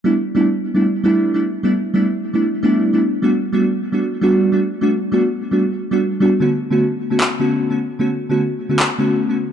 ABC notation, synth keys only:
X:1
M:4/4
L:1/16
Q:"Swing 16ths" 1/4=151
K:Glyd
V:1 name="Synth keys"
[G,A,B,DE] z2 [G,A,B,DE] z3 [G,A,B,DE] z2 [G,A,B,DE]3 [G,A,B,DE] z2 | [G,A,B,DE] z2 [G,A,B,DE] z3 [G,A,B,DE] z2 [G,A,B,DE]3 [G,A,B,DE] z2 | [G,A,B,DF] z2 [G,A,B,DF] z3 [G,A,B,DF] z2 [G,A,B,DF]3 [G,A,B,DF] z2 | [G,A,B,DF] z2 [G,A,B,DF] z3 [G,A,B,DF] z3 [G,A,B,DF] z2 [G,A,B,DF] z |
[D,A,B,CF] z2 [D,A,B,CF] z3 [D,A,B,CF] z2 [D,A,B,CF]3 [D,A,B,CF] z2 | [D,A,B,CF] z2 [D,A,B,CF] z3 [D,A,B,CF] z2 [D,A,B,CF]3 [D,A,B,CF] z2 |]